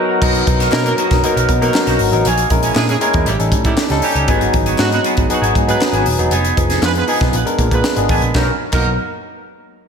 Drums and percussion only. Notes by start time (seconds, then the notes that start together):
0.22 kick, crash
0.35 closed hi-hat
0.47 kick, closed hi-hat
0.60 snare, closed hi-hat
0.72 snare, clap
0.86 closed hi-hat
0.98 closed hi-hat
1.11 kick, snare, closed hi-hat
1.24 closed hi-hat
1.37 closed hi-hat
1.49 kick, closed hi-hat
1.62 closed hi-hat
1.74 snare, clap
1.87 snare, closed hi-hat
1.99 open hi-hat
2.13 closed hi-hat
2.25 closed hi-hat
2.38 closed hi-hat
2.50 kick, closed hi-hat
2.63 closed hi-hat
2.75 snare, clap
2.89 closed hi-hat
3.01 closed hi-hat
3.14 kick, closed hi-hat
3.26 closed hi-hat
3.40 closed hi-hat
3.52 kick, closed hi-hat
3.65 kick, closed hi-hat
3.77 snare, clap
3.90 snare, closed hi-hat
4.02 open hi-hat
4.16 closed hi-hat
4.28 kick, closed hi-hat
4.41 closed hi-hat
4.54 kick, closed hi-hat
4.66 closed hi-hat
4.78 snare, clap
4.92 closed hi-hat
5.04 closed hi-hat
5.17 kick, closed hi-hat
5.30 closed hi-hat
5.44 closed hi-hat
5.55 kick, closed hi-hat
5.69 closed hi-hat
5.81 snare, clap
5.93 closed hi-hat
6.06 open hi-hat
6.19 closed hi-hat
6.31 closed hi-hat
6.45 closed hi-hat
6.57 kick, closed hi-hat
6.70 snare, closed hi-hat
6.83 snare, clap
6.95 closed hi-hat
7.08 open hi-hat
7.21 kick, snare, closed hi-hat
7.33 closed hi-hat
7.47 closed hi-hat
7.59 kick, closed hi-hat
7.71 kick, closed hi-hat
7.84 snare, clap
7.96 closed hi-hat
8.09 kick, open hi-hat
8.22 closed hi-hat
8.35 kick, snare, clap
8.72 kick, clap, crash